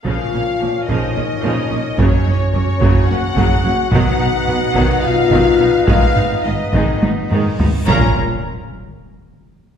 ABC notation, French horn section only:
X:1
M:7/8
L:1/8
Q:1/4=108
K:Bbphr
V:1 name="French horn section"
F3 E4 | D2 D2 G3 | ^F4 =F3 | F2 E2 z3 |
B, z6 |]